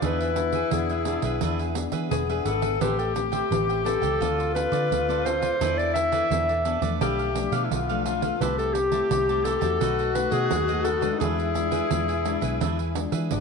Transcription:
0.01 E2 E3 B3 D4 E4 G#4 B4 E5, pandeiro
0.20 G#4 B4 E5, pandeiro
0.36 B3 D4 G#4, muted cavaquinho stroke, pandeiro
0.52 G#4 B4 E5, pandeiro
0.71 E2 B2 B3 D4 G#4, pandeiro
0.89 G#4 B4 E5, pandeiro
1.05 B3 D4 G#4 B4 E5, pandeiro
1.22 B1 G#4 B4 E5, pandeiro
1.41 E2 E3 B3 D4 G#4 B4 E5, pandeiro
1.59 G#4 B4 E5, pandeiro
1.75 B3 D4 G#4, muted cavaquinho stroke, pandeiro
1.92 E3 G#4 B4 E5, pandeiro
2.11 E1 B2 G#4, pandeiro
2.29 B3 D4 G#4 B4 E5, pandeiro
2.45 G#1 D4 G#4 A4 B4 E5, pandeiro
2.62 G#4 B4 E5, pandeiro
2.81 A1 A3 C4 G4 A4 B4 C5 E5 G5, pandeiro
2.99 A4 C5 E5 G5, pandeiro
3.15 C4 G4 B4, muted cavaquinho stroke, pandeiro
3.32 C5 E5 G5, pandeiro
3.51 A1 E3 C4 G4 B4, pandeiro
3.69 C5 E5 G5, pandeiro
3.85 C4 G4 A4 B4 C5 E5 G5, pandeiro
4.02 C#2 C5 E5 G5, pandeiro
4.21 D2 D3 C4 F4 A4 C5 D5, pandeiro
4.38 A4 C5 D5, pandeiro
4.55 C4 F4 A4 B4, muted cavaquinho stroke, pandeiro
4.72 D3 A4 D5, pandeiro
4.91 D2 A2, pandeiro
5.09 C4 F4 A4 C5 D5, pandeiro
5.25 F4 A4 C5 D5, pandeiro
5.42 A4 C5 D5, pandeiro
5.61 E2 E3 B3 D4 E4 A4 B4 D5, pandeiro
5.78 A4 B4 D5, pandeiro
5.94 E5, muted cavaquinho stroke, pandeiro
6.12 A4 B4 D5, pandeiro
6.30 E2 B2 B3 D4 A4, pandeiro
6.49 A4 B4 D5, pandeiro
6.65 B3 D4 E4 A4 B4 D5, pandeiro
6.81 E2 F3 A3 D4 A4 B4 D5, pandeiro
7.01 B1 B2 D4 G4 A4 B4 F5, pandeiro
7.18 A4 B4 F5, pandeiro
7.35 F3 A3 D4, muted cavaquinho stroke, pandeiro
7.51 B2 A4 B4 F5, pandeiro
7.64 E4
7.71 B1 B2 F4, pandeiro
7.89 F3 A3 D4 A4 B4 F5, pandeiro
8.05 D4 F4 A4 B4 F5, pandeiro
8.22 A4 B4 F5, pandeiro
8.40 C2 C3 A3 E4 G4 B4 C5 E5 A5, pandeiro
8.58 A4 C5 E5 A5, pandeiro
8.74 G4, muted cavaquinho stroke, pandeiro
8.92 A3 E4 G4 C5 E5 A5, pandeiro
9.11 C2 C3, pandeiro
9.29 A3 E4 G4 C5 E5 A5, pandeiro
9.44 G4 A4 C5 E5 A5, pandeiro
9.61 E2 A3 D#4 F#4 C5 E5 A5, pandeiro
9.80 B1 B2 D#4 F#4 A4 B4 D#5, pandeiro
9.99 A4 B4 D#5, pandeiro
10.15 A3 D#4 F#4 B4, muted cavaquinho stroke, pandeiro
10.31 B2 G#4 B4 D#5, pandeiro
10.51 D#2 F#2, pandeiro
10.68 A3 D#4 F#4 A4 B4 D#5, pandeiro
10.84 D#4 A4 B4 D#5, pandeiro
11.01 G#3 D4 A4 B4 D#5, pandeiro
11.14 D#4
11.20 E2 E3 D4 E4 G#4 B4 E5, pandeiro
11.38 G#4 B4 E5, pandeiro
11.54 G#3 D4 F4, muted cavaquinho stroke, pandeiro
11.71 G#4 B4 E5, pandeiro
11.91 E2 B2 G#3 D4 F4, pandeiro
12.08 G#4 B4 E5, pandeiro
12.25 G#3 D4 G#4 B4 E5, pandeiro
12.41 B1 G#4 B4 E5, pandeiro
12.61 E2 E3 D4 G#4 B4 E5, pandeiro
12.79 G#4 B4 E5, pandeiro
12.95 G#3 D4 F4, muted cavaquinho stroke, pandeiro
13.12 E3 G#4 B4 E5, pandeiro
13.31 G#1 B2 D4, pandeiro

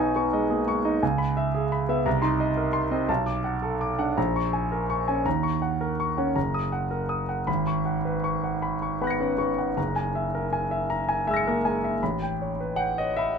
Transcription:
Already playing: B1 B3 D#4 G#4 D#5 G#5 C#6
0.16 B3 C#6
0.33 G#3 D#5
0.50 A#3 G#4
0.68 G#3 C#6
0.85 D#4 D#5
1.03 C#2 G#5
1.18 B5
1.37 E5
1.55 G#4
1.72 B5
1.89 B3 E5
2.06 C2 A#5
2.22 D#4 C6
2.40 D#5
2.57 A#4
2.73 C6
2.91 C4 D#5
3.08 B1 A5
3.26 D6
3.44 F#5
3.62 A4
3.81 D6
3.99 D4 F#5
4.17 A#1 A#5
4.36 C#6
4.53 G#5
4.72 A#4
4.90 C#6
5.08 C#4 G#5
5.25 D#2 A#5
5.43 C#6
5.62 F#5
5.81 A#4
6.00 C#6
6.18 C#4 F#5
6.36 F#1 A#5
6.54 D#6
6.72 F#5
6.91 A#4
7.09 D#6
7.29 F#5
7.47 G#1 B5
7.67 C#6
7.85 F#5
8.05 B4
8.24 C#6
8.44 F#5
8.62 B5
8.82 C#6
9.01 B3 F#5 B5 F#6
9.07 A#6 C#7
9.20 C#4 B4
9.38 B3 C#6
9.58 F#5
9.77 F#1 A#5
9.96 G#5
10.15 E5
10.35 A#4
10.53 G#5
10.71 E5
10.90 A#5
11.09 G#5
11.27 G#3 E5 G#5 E6
11.34 A#6 C#7
11.47 A#3 A#4
11.65 G#3 G#5
11.84 E5
12.03 A1 B5
12.22 G5
12.42 C#5
12.60 B4
12.76 F#5 G5
12.98 C#5 D#5
13.16 E5 B5

